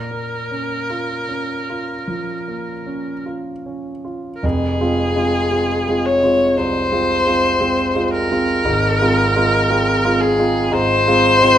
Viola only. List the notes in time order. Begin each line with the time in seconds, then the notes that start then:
Already playing: A#4
4.36 A#4
4.45 G#4
6.06 C#5
6.57 C5
8.13 A#4
10.21 G#4
10.73 C5